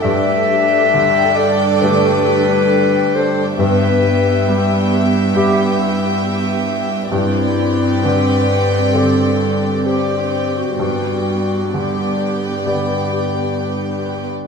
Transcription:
X:1
M:4/4
L:1/16
Q:1/4=67
K:G
V:1 name="Violin section"
[dg]16 | [eg]16 | [dg]12 [dg]4 | [dg]4 [dg]12 |]
V:2 name="Harp"
[G,,A,Ad] A, G d A g A d D, A, G d A g A d | G,, B, G, e B b B e G,, B, E e B2 B e | G,, C D d4 d D, C2 d c2 c2 | G,, B,2 d B2 B d D, B, G d B2 B d |]
V:3 name="Clarinet"
e6 d2 B6 c2 | B6- B z G2 z6 | E4 B4 A4 G3 F | F4 G8- G2 z2 |]
V:4 name="Viola section"
[DA]16 | [B,G]16 | [CG]12 [CG]4 | [G,B,]4 [B,G]12 |]
V:5 name="Grand piano"
G,,4 D,4 [A,Gd]8 | G,,4 G,4 [B,Ge]8 | G,,4 D,4 [CGd]8 | G,,4 D,4 [B,Gd]8 |]
V:6 name="Cello section" clef=bass
G,,16 | G,,16 | G,,16 | G,,16 |]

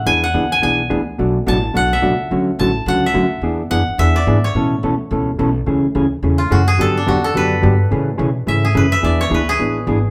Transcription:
X:1
M:4/4
L:1/8
Q:"Swing" 1/4=214
K:A
V:1 name="Koto"
g f2 g g3 z | z2 a2 f e3 | z2 a2 f e3 | z2 f2 e d2 c- |
c6 z2 | z4 z =F ^F G | A D F A B4 | z4 e G B e |
d c B G4- G |]
V:2 name="Hollow-body jazz guitar"
[E,B,DG] z [E,B,DG] z [E,B,DG] z [E,B,DG] z | [B,,F,A,DF] z [B,,F,A,DF] z [B,,F,A,DF] z [B,,F,A,DF] z | [D,F,A,CF] z [D,F,A,CF] z [D,F,A,CF] z [D,F,A,CF] z | [E,B,DG] z [E,B,DG] z [E,B,DG] z [E,B,DG] z |
[B,,E,A,CA] z [B,,E,A,CA] z [B,,E,A,CA] z [B,,E,A,CA] z | [C,E,A,CG] z [C,E,A,CG] z [C,E,A,CG] z [C,E,A,CG] z | [D,F,B,D=G] z [D,F,B,DG] z [D,F,B,DG] z [D,F,B,DG] z | [C,E,A,CG] z [C,E,A,CG] z [C,E,A,CG] z [C,E,A,CG] z |
[E,B,DG] z [E,B,DG] z [E,B,DG] z [E,B,DG] z |]
V:3 name="Upright bass" clef=bass
E,,2 C,,2 B,,,2 D,,2 | B,,,2 A,,,2 B,,,2 C,,2 | D,,2 A,,,2 C,,2 D,,2 | E,,2 F,, z E,,2 G,,2 |
A,,2 D,,2 C,,2 B,,,2 | C,, z D,,2 E,,2 F,,2 | =G,,2 E,,2 F,,2 G,,2 | A,,2 B,,2 G,,2 F,,2 |
E,,2 D,,2 A,,,2 G,,,2 |]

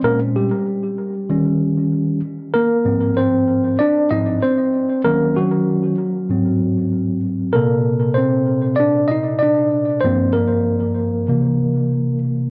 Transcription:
X:1
M:4/4
L:1/8
Q:"Swing 16ths" 1/4=96
K:Ablyd
V:1 name="Tine electric piano"
[B,B] [G,G]6 z | [B,B]2 [Cc]2 [Dd] [Ee] [Cc]2 | [B,B] [_G,_G]6 z | [B,B]2 [Cc]2 [Dd] [Ee] [Dd]2 |
[Cc] [B,B]6 z |]
V:2 name="Tine electric piano" clef=bass
[B,,A,_D] z3 [E,G,D]3 z | z [A,,F,C]3 z [A,,F,C] z2 | [E,_G,_D]3 z [A,,G,C]4 | [B,,C,=A]8 |
[G,,F,B,]4 [C,=E,B,]4 |]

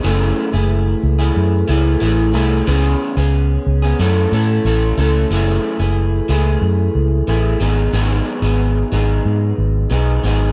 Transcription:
X:1
M:4/4
L:1/16
Q:1/4=91
K:F#dor
V:1 name="Clean electric guitar"
[F,,C,E,A,EG]3 [E,A,EG]4 [E,A,EG]3 [E,A,EG]2 [E,A,EG]2 [E,A,EG]2 | [C,E,B,CG]3 [B,CG]4 [B,CG] [F,,C,E,A,CA]2 [E,A,CA]2 [E,A,CA]2 [E,A,CA]2 | [F,,C,E,A,EG]3 [E,A,EG]3 [E,A,EG]6 [E,A,EG]2 [F,B,DG]2 | [G,,D,F,B,DG]3 [F,B,DG]3 [F,B,DG]6 [F,B,DG]2 [F,B,DG]2 |]
V:2 name="Fingered electric bass" clef=bass
F,,,2 z F,,,3 C,,2 F,,2 C,,2 A,,,2 ^B,,,2 | C,,2 z C,,3 C,,2 F,,2 A,,2 A,,,2 C,,2 | F,,,2 z F,,,3 C,,2 F,,2 C,,2 A,,,2 G,,,2 | G,,,2 z G,,,3 G,,,2 G,,2 G,,,2 B,,,2 G,,,2 |]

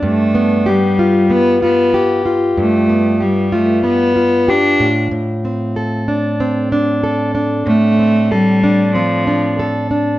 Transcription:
X:1
M:4/4
L:1/16
Q:"Swing 16ths" 1/4=94
K:Gmix
V:1 name="Steel-string acoustic guitar"
G,,2 B,2 G2 F2 B,2 F2 G2 F2 | G,,2 B,2 G2 F2 B,2 F2 G2 A,,2 | A,,2 C2 A2 D2 C2 D2 A2 D2 | A,,2 C2 A2 D2 C2 D2 A2 D2 |]
V:2 name="Cello"
A,4 G,4 B,2 B,4 z2 | A,4 G,2 A,2 B,4 D3 z | z16 | A,4 G,4 F,4 z4 |]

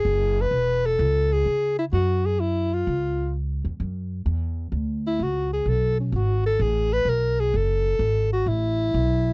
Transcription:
X:1
M:4/4
L:1/8
Q:"Swing" 1/4=128
K:F#m
V:1 name="Alto saxophone"
G B2 A2 G2 E | F G E ^E3 z2 | z4 z E F G | A C F A G B ^A G |
A3 F E4 |]
V:2 name="Upright bass" clef=bass
F,,,2 E,,,2 C,,2 C,2 | F,,4 C,,3 E,, | F,,2 E,,2 D,,2 C,,2 | B,,,2 G,,,2 A,,,2 B,,,2 |
F,,,2 G,,,2 A,,,2 B,,,2 |]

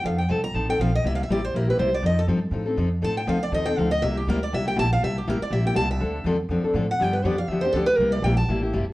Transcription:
X:1
M:4/4
L:1/8
Q:"Swing" 1/4=242
K:Cmix
V:1 name="Steel-string acoustic guitar"
f g a b a g f _e | (3e f e d c B =B c d | _e A z6 | a g f d _e g f e |
e G B d e g a f | e G B d e g a e- | e2 z4 z ^f | g =B d f e c A B |
B d g a2 z3 |]
V:2 name="Steel-string acoustic guitar"
[F,C_EA] z [F,CEA] z [F,CEA] [CEA] [F,CEA] z | [C,G,B,EG] z [C,G,B,EG] z [C,G,B,EG] [B,EG] [C,G,B,EG] z | [F,C_EA] z [F,CEA] z [F,CEA] [CEA] [F,CEA] z | [F,C_EA] z [F,CEA] z [F,CEA] [CEA] [F,CEA] z |
[C,G,B,EG] z [C,G,B,EG] z [C,G,B,EG] [B,EG] [C,G,B,EG] z | [C,G,B,EG] z [C,G,B,EG] z [C,G,B,EG] [B,EG] [C,G,B,EG] z | [D,F,CDA] z [D,F,CDA] z [D,F,CDA] [CDA] [D,F,CDA] z | [D,F,=B,DG] z [D,F,B,DG] z [D,F,B,DG] [B,DG] [D,F,B,DG] z |
[C,G,B,EG] z [C,G,B,EG] z [C,G,B,EG] [B,EG] [C,G,B,EG] z |]
V:3 name="Upright bass" clef=bass
F,,2 C,,2 A,,,2 B,,,2 | C,,2 A,,,2 B,,,2 C,,2 | F,,2 G,,2 A,,2 F,,2 | A,,2 D,,2 _E,,2 D,,2 |
C,,2 D,,2 C,,2 B,,,2 | C,,2 A,,, z B,,,2 C,,2 | D,,2 E,,2 F,, z A,,2 | G,,2 F,,2 E,,2 D,,2 |
C,,2 B,,,2 A,,,2 G,,, z |]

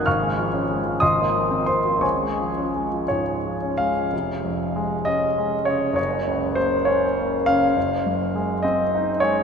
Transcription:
X:1
M:6/8
L:1/16
Q:3/8=65
K:Db
V:1 name="Grand piano"
[fd'f']6 [ec'e']4 [cc']2 | [dad']6 d4 f2- | f6 e4 d2 | d4 c2 d4 f2- |
f6 e4 d2 |]
V:2 name="Grand piano" clef=bass
A,,, A, F, D A, F, A,,, B, F, C B, F, | D,, A, F, D A, F, A,, A, F, D A, F, | F,,,2 F,,2 A,2 D2 A,2 D,2 | G,,,2 D,,2 B,2 D2 B,2 D,2 |
G,,,2 G,,2 A,2 C2 E2 A,2 |]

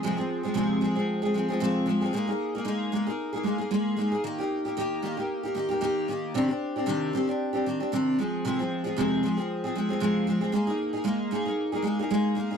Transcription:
X:1
M:4/4
L:1/16
Q:"Swing 16ths" 1/4=114
K:Fdor
V:1 name="Steel-string acoustic guitar"
[F,,C,F,A,CA] [F,A,CA]2 [F,A,CA] [F,,C,F,A,CA]2 [F,A,CA] [F,A,CA]2 [F,A,CA] [F,A,CA] [F,A,CA] [F,,C,F,A,CA]2 [F,A,CA] [F,A,CA] | [A,B,EA] [B,EA]2 [B,EA] [A,B,EA]2 [A,B,EA] [B,EA]2 [B,EA] [A,B,EA] [B,EA] [A,B,EA]2 [A,B,EA] [B,EA] | [E,B,EG] [B,EG]2 [B,EG] [E,B,EG]2 [E,B,EG] [B,EG]2 [B,EG] [E,B,EG] [B,EG] [E,B,EG]2 [E,B,EG]2 | [C,E,CDG] [CDG]2 [CDG] [C,E,CDG]2 [E,CDG] [CDG]2 [CDG] [E,CDG] [CDG] [C,E,CDG]2 [F,A,CA]2 |
[F,,C,F,A,CA] [F,A,CA]2 [F,A,CA] [F,,C,F,A,CA]2 [F,A,CA] [F,A,CA]2 [F,A,CA] [F,A,CA] [F,A,CA] [F,,C,F,A,CA]2 [F,A,CA] [F,A,CA] | [A,B,EA] [B,EA]2 [B,EA] [A,B,EA]2 [A,B,EA] [B,EA]2 [B,EA] [A,B,EA] [B,EA] [A,B,EA]2 [A,B,EA] [B,EA] |]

